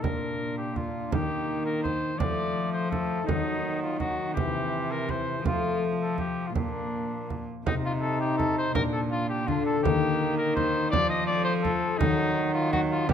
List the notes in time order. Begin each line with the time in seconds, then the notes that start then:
0.00 A#2 A#3 D4 F4 A#4, frame drum
0.57 G4
0.72 A#3 D4 F4, frame drum
0.77 F4
1.09 D#3 A#3 D#4 G4, frame drum
1.13 D#3 A#3 G4
1.65 A#4
1.83 C5, frame drum
2.17 F3 A3 C4 F4 D5, frame drum
2.21 F3 A3
2.72 C5
2.90 A3 C4 F4 A4, frame drum
3.25 D#3 F#3 A#3 D#4 F#4, frame drum
3.82 F4
3.97 F#3 A#3 D#4 F#4, frame drum
4.32 E3 C4 E4 G4
4.36 C3, frame drum
4.91 A#4
5.04 C4 E4 G4
5.09 E3 C5, frame drum
5.42 F3 A3 C4 F4 A4, frame drum
5.46 F4
6.01 A4
6.18 G4, frame drum
6.47 F4
6.51 A#2 A#3 F4
6.56 D4, frame drum
7.30 frame drum
7.66 C3 D#4, frame drum
7.85 F4
8.01 C4 D#4 A4
8.20 G4
8.37 C4 D#4 A4, frame drum
8.58 C5
8.75 A#2 D4 A#4, frame drum
8.93 A4
9.11 A#3 D4 F4
9.29 G4
9.47 D3 A#3 D4 F4, frame drum
9.66 A4
9.83 D#3 A#3 G4, frame drum
10.22 A#3 D#4 G4
10.38 A#4
10.55 A#3 D#4 G4 C5, frame drum
10.90 F3 D5, frame drum
11.09 D#5
11.27 A3 C4 D5
11.31 F4
11.45 C5
11.63 F3 A3 C4 F4 A4, frame drum
11.98 D#3 F#3 D#4, frame drum
12.37 A#3 D#4 F#4
12.54 F4
12.72 F#3 A#3 D#4 F#4, frame drum
12.91 F4
13.09 C3 E3 G4, frame drum